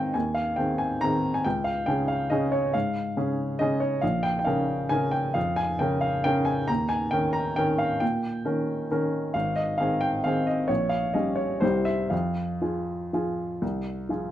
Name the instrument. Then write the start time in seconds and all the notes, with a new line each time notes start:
upright piano
Already playing: G#2 D#3 C4 G#4 C5 C#5 D#5 F5 G5
0.14 D#2 G#5
0.34 F5
0.56 D#3 C4 G#4 G5
0.78 G#5
1.01 D#3 C4 G#4 A#5
1.34 G#5
1.44 C#2 G5
1.64 F5
1.86 C#3 C#4 G#4 G5
2.08 F5
2.30 C#3 C#4 G#4 D#5
2.52 C#5
2.74 G#2 F5
3.17 C#3 C#4 G#4
3.59 C#3 C#4 G#4 D#5
3.80 C#5
4.01 A#1 F5
4.23 G5
4.39 G5
4.45 C#3 C#4 A#4 F5
4.89 C#3 C#4 A#4 G#5
5.11 G5
5.34 F2 F5
5.56 G#5
5.79 C#3 C#4 A#4 G5
6.01 F5
6.24 C#3 C#4 A#4 G5
6.45 G#5
6.68 D#2 A#5
6.89 G#5
7.11 D#3 C#4 A#4 G5
7.33 A#5
7.56 D#3 C#4 A#4 G5
7.78 F5
8.00 A#2 G5
8.45 D#3 C#4 A#4
8.91 D#3 C#4 A#4
9.34 G#1 F5
9.56 D#5
9.78 D#3 C4 G#4 F5
10.01 G5
10.24 D#3 C4 G#4 F5
10.47 D#5
10.68 A#1 C#5
10.89 F5
11.14 G3 C#4 G4 D#5
11.36 C#5
11.60 C2 G3 E4 G4 C5
11.85 E5
12.10 F2 F5
12.62 F3 F4 G#4
13.13 F3 F4 G#4
13.62 C2
14.09 F3 F4 G#4